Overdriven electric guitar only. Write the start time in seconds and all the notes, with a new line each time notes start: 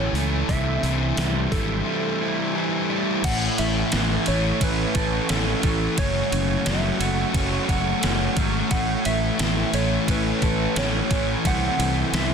Already playing: E3 A3 C#4
0.14 A3
0.49 C3
0.83 E3
1.17 G3
1.52 E3
1.86 G3
2.21 E4
2.55 E3
2.89 G3
3.24 A2
3.58 E3
3.94 E3
4.27 A3
4.62 C#4
4.96 A4
5.29 C#4
5.65 E3
5.99 F#2
6.32 C#3
6.66 F#3
7.00 A3
7.35 C#4
7.70 F#4
8.03 C#4
8.37 F#3
8.71 A2
9.05 E3
9.40 E3
9.75 A3
10.09 C#4
10.43 A4
10.77 C#4
11.11 E3
11.45 C3
11.79 E3
12.14 E3